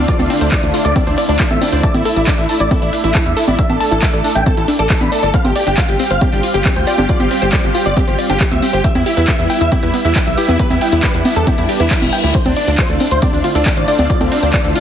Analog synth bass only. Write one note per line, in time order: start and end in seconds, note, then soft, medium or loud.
0.19 0.28 D2 medium
0.41 0.50 D2 medium
0.63 0.72 D2 medium
0.85 0.94 D2 medium
1.07 1.16 D2 medium
1.29 1.38 D2 medium
1.51 1.60 A1 medium
1.73 1.81 D2 medium
1.94 2.03 A1 medium
2.16 2.25 A1 medium
2.38 2.47 A1 medium
2.60 2.69 A1 medium
2.82 2.91 A1 medium
3.04 3.13 A1 medium
3.26 3.35 E2 medium
3.48 3.57 A1 medium
3.70 3.79 A1 medium
3.92 4.00 A1 medium
4.14 4.22 A1 medium
4.35 4.44 A1 medium
4.57 4.66 A1 medium
4.79 4.88 A1 medium
5.01 5.10 A1 medium
5.23 5.32 G1 medium
5.45 5.54 G1 medium
5.67 5.76 G1 medium
5.89 5.98 G1 medium
6.11 6.19 G1 medium
6.32 6.41 G1 medium
6.54 6.63 G1 medium
6.76 6.85 D2 medium
6.98 7.07 G1 medium
7.20 7.29 G1 medium
7.42 7.51 G1 medium
7.64 7.73 G1 medium
7.86 7.95 G1 medium
8.08 8.17 G1 medium
8.30 8.39 G1 medium
8.52 8.60 D2 medium
8.73 8.82 G1 medium
8.95 9.04 E2 medium
9.17 9.26 E2 medium
9.39 9.48 E2 medium
9.61 9.70 E2 medium
9.83 9.92 E2 medium
10.05 10.14 E2 medium
10.27 10.36 B1 medium
10.49 10.57 E2 medium
10.71 10.79 E2 medium
10.92 11.01 E2 medium
11.14 11.23 E2 medium
11.36 11.45 E2 medium
11.58 11.67 E2 medium
11.80 11.89 E2 medium
12.02 12.11 E1 medium
12.24 12.33 D2 medium
12.46 12.55 D2 medium
12.68 12.76 D2 medium
12.89 12.98 D2 medium
13.11 13.20 D2 medium
13.33 13.42 D2 medium
13.55 13.64 D2 medium
13.77 13.86 A1 medium
13.99 14.08 D2 medium
14.21 14.30 D2 medium
14.43 14.52 D2 medium
14.65 14.73 D2 medium